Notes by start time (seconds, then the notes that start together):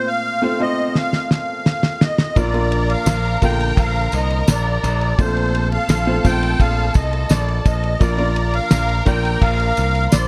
Already playing: A#2 A3 C4 F4 A4 C5
0.07 F5
0.42 A3 C4 F4 A4 C5
0.59 A3 C4 F4 A4 C5 D#5
0.95 F5, snare
1.13 snare
1.31 F5, snare
1.66 F5, snare
1.83 snare
2.01 D#5, snare
2.18 snare
2.36 A#1 A#2 F3 A#3 D4 F4 A#4 D5 A#5, kick, ride, tambourine
2.53 A#3 D4 F4 A#4 D5, ride
2.72 ride
2.90 F5, ride
3.06 A#1, snare, ride, tambourine
3.25 ride
3.41 A#1 D3 A#3 F4 A#4 F5 G5, kick, ride, tambourine
3.60 ride
3.77 A#1 F5, kick, ride, tambourine
3.96 ride
4.12 C2 D#5, ride, tambourine
4.30 ride
4.47 A#1 D5, snare, ride, tambourine
4.83 A#1 D5, snare, ride, tambourine
5.01 ride
5.18 A#1 A#2 A3 C4 F4 A4 C5 A5, kick, ride, tambourine
5.37 ride
5.55 ride
5.72 F5, ride
5.89 A#1, snare, ride, tambourine
6.06 A3 C4 F4 A4 C5
6.24 A#1 A3 C4 F4 A4 C5 G5, kick, ride, tambourine
6.43 ride
6.60 A#1 F5, kick, ride, tambourine
6.94 C2 D#5, kick, ride, tambourine
7.13 ride
7.29 A#1 D5, snare, ride, tambourine
7.48 ride
7.65 A#1 D#5, kick, ride, tambourine
7.84 ride
8.00 A#1 A#2 F3 A#3 D4 F4 A#4 D5 A#5, kick, ride, tambourine
8.17 A#3 D4 F4 A#4 D5, ride
8.36 ride
8.54 F5, ride
8.71 A#1, snare, ride, tambourine
8.89 ride
9.05 A#1 A#3 D4 F4 A#4 D5 G5, kick, ride, tambourine
9.25 ride
9.41 A#1 F5, kick, ride
9.60 ride
9.77 C2, ride, tambourine
9.95 ride
10.12 A#1 C5 D5 C6, snare, ride, tambourine